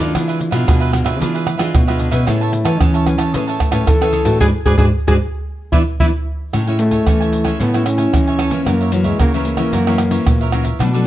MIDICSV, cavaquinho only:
0, 0, Header, 1, 3, 480
1, 0, Start_track
1, 0, Tempo, 532387
1, 133, Time_signature, 4, 2, 24, 8
1, 9979, End_track
2, 0, Start_track
2, 0, Title_t, "Cavaquinho"
2, 0, Program_c, 0, 24
2, 0, Note_on_c, 0, 71, 63
2, 0, Note_on_c, 0, 74, 60
2, 1, Note_on_c, 0, 69, 53
2, 109, Note_off_c, 0, 74, 0
2, 114, Note_off_c, 0, 71, 0
2, 117, Note_off_c, 0, 69, 0
2, 124, Note_on_c, 0, 62, 50
2, 130, Note_on_c, 0, 68, 52
2, 135, Note_on_c, 0, 71, 56
2, 140, Note_on_c, 0, 76, 56
2, 239, Note_off_c, 0, 62, 0
2, 240, Note_off_c, 0, 76, 0
2, 242, Note_off_c, 0, 68, 0
2, 245, Note_off_c, 0, 71, 0
2, 251, Note_on_c, 0, 76, 69
2, 262, Note_on_c, 0, 71, 56
2, 268, Note_on_c, 0, 68, 59
2, 346, Note_off_c, 0, 68, 0
2, 349, Note_off_c, 0, 71, 0
2, 351, Note_off_c, 0, 76, 0
2, 459, Note_on_c, 0, 76, 65
2, 469, Note_on_c, 0, 71, 60
2, 480, Note_on_c, 0, 68, 59
2, 586, Note_off_c, 0, 76, 0
2, 591, Note_off_c, 0, 71, 0
2, 597, Note_off_c, 0, 68, 0
2, 601, Note_on_c, 0, 62, 58
2, 608, Note_on_c, 0, 68, 60
2, 614, Note_on_c, 0, 71, 59
2, 618, Note_on_c, 0, 76, 61
2, 712, Note_off_c, 0, 76, 0
2, 717, Note_off_c, 0, 62, 0
2, 721, Note_off_c, 0, 68, 0
2, 722, Note_off_c, 0, 71, 0
2, 723, Note_on_c, 0, 76, 75
2, 733, Note_on_c, 0, 71, 73
2, 742, Note_on_c, 0, 68, 58
2, 824, Note_off_c, 0, 68, 0
2, 826, Note_off_c, 0, 71, 0
2, 828, Note_off_c, 0, 76, 0
2, 942, Note_on_c, 0, 76, 76
2, 951, Note_on_c, 0, 71, 64
2, 957, Note_on_c, 0, 68, 58
2, 1068, Note_off_c, 0, 76, 0
2, 1072, Note_off_c, 0, 71, 0
2, 1075, Note_off_c, 0, 68, 0
2, 1078, Note_on_c, 0, 62, 49
2, 1085, Note_on_c, 0, 68, 46
2, 1089, Note_on_c, 0, 71, 63
2, 1095, Note_on_c, 0, 76, 60
2, 1196, Note_off_c, 0, 62, 0
2, 1196, Note_off_c, 0, 76, 0
2, 1199, Note_off_c, 0, 68, 0
2, 1201, Note_off_c, 0, 71, 0
2, 1207, Note_on_c, 0, 76, 74
2, 1216, Note_on_c, 0, 71, 66
2, 1222, Note_on_c, 0, 68, 63
2, 1409, Note_off_c, 0, 76, 0
2, 1416, Note_off_c, 0, 71, 0
2, 1419, Note_on_c, 0, 76, 69
2, 1427, Note_off_c, 0, 68, 0
2, 1427, Note_on_c, 0, 71, 57
2, 1438, Note_on_c, 0, 68, 53
2, 1666, Note_off_c, 0, 76, 0
2, 1670, Note_off_c, 0, 71, 0
2, 1675, Note_off_c, 0, 68, 0
2, 1690, Note_on_c, 0, 76, 73
2, 1696, Note_on_c, 0, 71, 59
2, 1704, Note_on_c, 0, 68, 50
2, 1789, Note_off_c, 0, 68, 0
2, 1792, Note_on_c, 0, 62, 54
2, 1793, Note_off_c, 0, 71, 0
2, 1797, Note_off_c, 0, 76, 0
2, 1800, Note_on_c, 0, 68, 58
2, 1804, Note_on_c, 0, 71, 58
2, 1808, Note_on_c, 0, 76, 49
2, 1894, Note_off_c, 0, 76, 0
2, 1903, Note_off_c, 0, 71, 0
2, 1905, Note_on_c, 0, 76, 74
2, 1912, Note_off_c, 0, 68, 0
2, 1913, Note_off_c, 0, 62, 0
2, 1914, Note_on_c, 0, 71, 57
2, 1923, Note_on_c, 0, 68, 55
2, 2029, Note_off_c, 0, 76, 0
2, 2032, Note_off_c, 0, 68, 0
2, 2033, Note_off_c, 0, 71, 0
2, 2043, Note_on_c, 0, 68, 52
2, 2050, Note_on_c, 0, 73, 58
2, 2056, Note_on_c, 0, 76, 54
2, 2060, Note_on_c, 0, 81, 56
2, 2158, Note_off_c, 0, 68, 0
2, 2161, Note_off_c, 0, 73, 0
2, 2163, Note_off_c, 0, 81, 0
2, 2164, Note_off_c, 0, 76, 0
2, 2174, Note_on_c, 0, 81, 76
2, 2182, Note_on_c, 0, 76, 68
2, 2189, Note_on_c, 0, 73, 49
2, 2270, Note_off_c, 0, 73, 0
2, 2273, Note_off_c, 0, 76, 0
2, 2275, Note_off_c, 0, 81, 0
2, 2386, Note_on_c, 0, 81, 68
2, 2392, Note_on_c, 0, 76, 57
2, 2400, Note_on_c, 0, 73, 51
2, 2509, Note_off_c, 0, 81, 0
2, 2512, Note_off_c, 0, 76, 0
2, 2516, Note_off_c, 0, 73, 0
2, 2528, Note_on_c, 0, 68, 49
2, 2535, Note_on_c, 0, 73, 58
2, 2539, Note_on_c, 0, 76, 61
2, 2545, Note_on_c, 0, 81, 60
2, 2640, Note_off_c, 0, 68, 0
2, 2641, Note_off_c, 0, 81, 0
2, 2644, Note_off_c, 0, 73, 0
2, 2646, Note_off_c, 0, 76, 0
2, 2651, Note_on_c, 0, 81, 88
2, 2658, Note_on_c, 0, 76, 62
2, 2669, Note_on_c, 0, 73, 70
2, 2749, Note_off_c, 0, 73, 0
2, 2752, Note_off_c, 0, 76, 0
2, 2753, Note_off_c, 0, 81, 0
2, 2866, Note_on_c, 0, 81, 73
2, 2874, Note_on_c, 0, 76, 60
2, 2885, Note_on_c, 0, 73, 50
2, 2989, Note_off_c, 0, 81, 0
2, 2993, Note_off_c, 0, 76, 0
2, 2999, Note_off_c, 0, 73, 0
2, 3009, Note_on_c, 0, 68, 53
2, 3014, Note_on_c, 0, 73, 50
2, 3020, Note_on_c, 0, 76, 58
2, 3026, Note_on_c, 0, 81, 58
2, 3120, Note_off_c, 0, 68, 0
2, 3123, Note_off_c, 0, 73, 0
2, 3123, Note_off_c, 0, 81, 0
2, 3126, Note_off_c, 0, 76, 0
2, 3134, Note_on_c, 0, 81, 75
2, 3143, Note_on_c, 0, 76, 72
2, 3151, Note_on_c, 0, 73, 62
2, 3338, Note_off_c, 0, 81, 0
2, 3348, Note_off_c, 0, 76, 0
2, 3348, Note_on_c, 0, 81, 59
2, 3355, Note_off_c, 0, 73, 0
2, 3359, Note_on_c, 0, 76, 64
2, 3366, Note_on_c, 0, 73, 54
2, 3590, Note_off_c, 0, 81, 0
2, 3595, Note_off_c, 0, 76, 0
2, 3599, Note_off_c, 0, 73, 0
2, 3621, Note_on_c, 0, 81, 72
2, 3630, Note_on_c, 0, 76, 65
2, 3639, Note_on_c, 0, 73, 58
2, 3718, Note_off_c, 0, 73, 0
2, 3722, Note_on_c, 0, 68, 54
2, 3724, Note_off_c, 0, 76, 0
2, 3726, Note_off_c, 0, 81, 0
2, 3729, Note_on_c, 0, 73, 58
2, 3735, Note_on_c, 0, 76, 64
2, 3738, Note_on_c, 0, 81, 53
2, 3821, Note_off_c, 0, 81, 0
2, 3829, Note_off_c, 0, 76, 0
2, 3832, Note_on_c, 0, 81, 65
2, 3837, Note_off_c, 0, 68, 0
2, 3840, Note_off_c, 0, 73, 0
2, 3840, Note_on_c, 0, 76, 71
2, 3849, Note_on_c, 0, 73, 56
2, 3952, Note_off_c, 0, 81, 0
2, 3956, Note_off_c, 0, 76, 0
2, 3961, Note_off_c, 0, 73, 0
2, 3971, Note_on_c, 0, 68, 91
2, 3978, Note_on_c, 0, 71, 92
2, 3979, Note_on_c, 0, 74, 86
2, 4049, Note_off_c, 0, 68, 0
2, 4049, Note_off_c, 0, 74, 0
2, 4050, Note_off_c, 0, 71, 0
2, 4207, Note_on_c, 0, 74, 111
2, 4211, Note_on_c, 0, 71, 94
2, 4216, Note_on_c, 0, 68, 85
2, 4286, Note_off_c, 0, 71, 0
2, 4286, Note_off_c, 0, 74, 0
2, 4287, Note_off_c, 0, 68, 0
2, 4314, Note_on_c, 0, 74, 89
2, 4316, Note_on_c, 0, 71, 80
2, 4319, Note_on_c, 0, 68, 72
2, 4398, Note_off_c, 0, 68, 0
2, 4398, Note_off_c, 0, 71, 0
2, 4399, Note_off_c, 0, 74, 0
2, 4580, Note_on_c, 0, 74, 104
2, 4586, Note_on_c, 0, 71, 100
2, 4589, Note_on_c, 0, 68, 87
2, 4654, Note_off_c, 0, 74, 0
2, 4655, Note_off_c, 0, 71, 0
2, 4656, Note_off_c, 0, 68, 0
2, 5162, Note_on_c, 0, 74, 96
2, 5167, Note_on_c, 0, 76, 99
2, 5170, Note_on_c, 0, 71, 88
2, 5244, Note_off_c, 0, 71, 0
2, 5244, Note_off_c, 0, 74, 0
2, 5244, Note_off_c, 0, 76, 0
2, 5415, Note_on_c, 0, 71, 89
2, 5416, Note_on_c, 0, 76, 89
2, 5420, Note_on_c, 0, 74, 90
2, 5490, Note_off_c, 0, 74, 0
2, 5490, Note_off_c, 0, 76, 0
2, 5491, Note_off_c, 0, 71, 0
2, 5891, Note_on_c, 0, 69, 49
2, 5896, Note_on_c, 0, 73, 48
2, 5902, Note_on_c, 0, 76, 51
2, 5908, Note_on_c, 0, 80, 57
2, 6001, Note_off_c, 0, 69, 0
2, 6003, Note_off_c, 0, 80, 0
2, 6004, Note_off_c, 0, 73, 0
2, 6007, Note_off_c, 0, 76, 0
2, 6014, Note_on_c, 0, 80, 61
2, 6025, Note_on_c, 0, 76, 57
2, 6032, Note_on_c, 0, 73, 54
2, 6114, Note_off_c, 0, 73, 0
2, 6118, Note_off_c, 0, 76, 0
2, 6123, Note_off_c, 0, 80, 0
2, 6231, Note_on_c, 0, 80, 57
2, 6241, Note_on_c, 0, 76, 52
2, 6248, Note_on_c, 0, 73, 47
2, 6351, Note_off_c, 0, 80, 0
2, 6356, Note_off_c, 0, 76, 0
2, 6360, Note_off_c, 0, 73, 0
2, 6371, Note_on_c, 0, 69, 50
2, 6378, Note_on_c, 0, 73, 49
2, 6385, Note_on_c, 0, 76, 55
2, 6387, Note_on_c, 0, 80, 47
2, 6482, Note_off_c, 0, 69, 0
2, 6485, Note_off_c, 0, 73, 0
2, 6485, Note_off_c, 0, 80, 0
2, 6488, Note_off_c, 0, 76, 0
2, 6495, Note_on_c, 0, 80, 74
2, 6505, Note_on_c, 0, 76, 72
2, 6510, Note_on_c, 0, 73, 54
2, 6700, Note_off_c, 0, 80, 0
2, 6708, Note_off_c, 0, 76, 0
2, 6711, Note_on_c, 0, 80, 65
2, 6717, Note_off_c, 0, 73, 0
2, 6719, Note_on_c, 0, 76, 66
2, 6728, Note_on_c, 0, 73, 50
2, 6832, Note_off_c, 0, 80, 0
2, 6836, Note_off_c, 0, 76, 0
2, 6840, Note_off_c, 0, 73, 0
2, 6849, Note_on_c, 0, 69, 48
2, 6857, Note_on_c, 0, 73, 50
2, 6861, Note_on_c, 0, 76, 50
2, 6866, Note_on_c, 0, 80, 57
2, 6961, Note_off_c, 0, 69, 0
2, 6965, Note_off_c, 0, 73, 0
2, 6965, Note_off_c, 0, 80, 0
2, 6967, Note_off_c, 0, 76, 0
2, 6976, Note_on_c, 0, 80, 64
2, 6986, Note_on_c, 0, 76, 58
2, 6994, Note_on_c, 0, 73, 53
2, 7074, Note_off_c, 0, 73, 0
2, 7080, Note_off_c, 0, 76, 0
2, 7080, Note_off_c, 0, 80, 0
2, 7192, Note_on_c, 0, 80, 62
2, 7202, Note_on_c, 0, 76, 50
2, 7210, Note_on_c, 0, 73, 50
2, 7433, Note_off_c, 0, 80, 0
2, 7438, Note_off_c, 0, 76, 0
2, 7441, Note_off_c, 0, 73, 0
2, 7462, Note_on_c, 0, 80, 64
2, 7471, Note_on_c, 0, 76, 55
2, 7476, Note_on_c, 0, 73, 42
2, 7557, Note_off_c, 0, 73, 0
2, 7560, Note_on_c, 0, 69, 70
2, 7562, Note_off_c, 0, 76, 0
2, 7567, Note_off_c, 0, 80, 0
2, 7567, Note_on_c, 0, 73, 69
2, 7573, Note_on_c, 0, 76, 68
2, 7578, Note_on_c, 0, 80, 83
2, 7660, Note_off_c, 0, 80, 0
2, 7667, Note_off_c, 0, 76, 0
2, 7671, Note_on_c, 0, 80, 48
2, 7675, Note_off_c, 0, 73, 0
2, 7677, Note_off_c, 0, 69, 0
2, 7678, Note_on_c, 0, 76, 44
2, 7686, Note_on_c, 0, 73, 41
2, 7792, Note_off_c, 0, 80, 0
2, 7796, Note_off_c, 0, 76, 0
2, 7800, Note_off_c, 0, 73, 0
2, 7806, Note_on_c, 0, 66, 48
2, 7814, Note_on_c, 0, 70, 54
2, 7820, Note_on_c, 0, 73, 51
2, 7822, Note_on_c, 0, 76, 53
2, 7920, Note_off_c, 0, 66, 0
2, 7924, Note_off_c, 0, 70, 0
2, 7927, Note_off_c, 0, 73, 0
2, 7928, Note_off_c, 0, 76, 0
2, 7939, Note_on_c, 0, 76, 60
2, 7948, Note_on_c, 0, 73, 56
2, 7955, Note_on_c, 0, 70, 47
2, 8037, Note_off_c, 0, 70, 0
2, 8040, Note_off_c, 0, 73, 0
2, 8043, Note_off_c, 0, 76, 0
2, 8151, Note_on_c, 0, 76, 61
2, 8158, Note_on_c, 0, 73, 62
2, 8167, Note_on_c, 0, 70, 45
2, 8272, Note_off_c, 0, 76, 0
2, 8276, Note_off_c, 0, 73, 0
2, 8281, Note_off_c, 0, 70, 0
2, 8288, Note_on_c, 0, 66, 50
2, 8296, Note_on_c, 0, 70, 50
2, 8301, Note_on_c, 0, 73, 49
2, 8306, Note_on_c, 0, 76, 57
2, 8401, Note_off_c, 0, 66, 0
2, 8405, Note_off_c, 0, 70, 0
2, 8408, Note_off_c, 0, 73, 0
2, 8410, Note_off_c, 0, 76, 0
2, 8423, Note_on_c, 0, 76, 67
2, 8430, Note_on_c, 0, 73, 71
2, 8439, Note_on_c, 0, 70, 60
2, 8619, Note_off_c, 0, 76, 0
2, 8628, Note_off_c, 0, 73, 0
2, 8630, Note_on_c, 0, 76, 58
2, 8637, Note_off_c, 0, 70, 0
2, 8639, Note_on_c, 0, 73, 63
2, 8648, Note_on_c, 0, 70, 49
2, 8752, Note_off_c, 0, 76, 0
2, 8757, Note_off_c, 0, 73, 0
2, 8761, Note_off_c, 0, 70, 0
2, 8771, Note_on_c, 0, 66, 54
2, 8778, Note_on_c, 0, 70, 46
2, 8782, Note_on_c, 0, 73, 49
2, 8789, Note_on_c, 0, 76, 56
2, 8883, Note_off_c, 0, 66, 0
2, 8887, Note_off_c, 0, 70, 0
2, 8887, Note_off_c, 0, 76, 0
2, 8889, Note_off_c, 0, 73, 0
2, 8897, Note_on_c, 0, 76, 73
2, 8907, Note_on_c, 0, 73, 63
2, 8914, Note_on_c, 0, 70, 56
2, 8996, Note_off_c, 0, 70, 0
2, 8998, Note_off_c, 0, 73, 0
2, 9001, Note_off_c, 0, 76, 0
2, 9111, Note_on_c, 0, 76, 56
2, 9120, Note_on_c, 0, 73, 58
2, 9130, Note_on_c, 0, 70, 46
2, 9354, Note_off_c, 0, 76, 0
2, 9358, Note_off_c, 0, 73, 0
2, 9363, Note_off_c, 0, 70, 0
2, 9385, Note_on_c, 0, 76, 66
2, 9391, Note_on_c, 0, 73, 56
2, 9398, Note_on_c, 0, 70, 51
2, 9478, Note_off_c, 0, 70, 0
2, 9482, Note_on_c, 0, 66, 66
2, 9484, Note_off_c, 0, 73, 0
2, 9488, Note_off_c, 0, 76, 0
2, 9489, Note_on_c, 0, 70, 72
2, 9495, Note_on_c, 0, 73, 75
2, 9499, Note_on_c, 0, 76, 75
2, 9578, Note_off_c, 0, 76, 0
2, 9586, Note_off_c, 0, 73, 0
2, 9589, Note_on_c, 0, 76, 46
2, 9595, Note_off_c, 0, 70, 0
2, 9597, Note_on_c, 0, 73, 42
2, 9599, Note_off_c, 0, 66, 0
2, 9606, Note_on_c, 0, 70, 37
2, 9713, Note_off_c, 0, 76, 0
2, 9717, Note_off_c, 0, 73, 0
2, 9721, Note_off_c, 0, 70, 0
2, 9727, Note_on_c, 0, 62, 53
2, 9733, Note_on_c, 0, 69, 50
2, 9741, Note_on_c, 0, 71, 56
2, 9745, Note_on_c, 0, 74, 50
2, 9842, Note_off_c, 0, 62, 0
2, 9845, Note_off_c, 0, 69, 0
2, 9846, Note_off_c, 0, 74, 0
2, 9849, Note_off_c, 0, 71, 0
2, 9857, Note_on_c, 0, 74, 67
2, 9866, Note_on_c, 0, 71, 52
2, 9873, Note_on_c, 0, 69, 58
2, 9959, Note_off_c, 0, 69, 0
2, 9964, Note_off_c, 0, 74, 0
2, 9965, Note_off_c, 0, 71, 0
2, 9979, End_track
3, 0, Start_track
3, 0, Title_t, "Muted cavaquinho strokes"
3, 353, Note_on_c, 9, 29, 42
3, 443, Note_off_c, 9, 29, 0
3, 830, Note_on_c, 9, 29, 41
3, 920, Note_off_c, 9, 29, 0
3, 2279, Note_on_c, 9, 29, 44
3, 2369, Note_off_c, 9, 29, 0
3, 2758, Note_on_c, 9, 29, 40
3, 2848, Note_off_c, 9, 29, 0
3, 6124, Note_on_c, 9, 29, 38
3, 6214, Note_off_c, 9, 29, 0
3, 7083, Note_on_c, 9, 29, 39
3, 7173, Note_off_c, 9, 29, 0
3, 8044, Note_on_c, 9, 29, 35
3, 8134, Note_off_c, 9, 29, 0
3, 9004, Note_on_c, 9, 29, 35
3, 9094, Note_off_c, 9, 29, 0
3, 9979, End_track
0, 0, End_of_file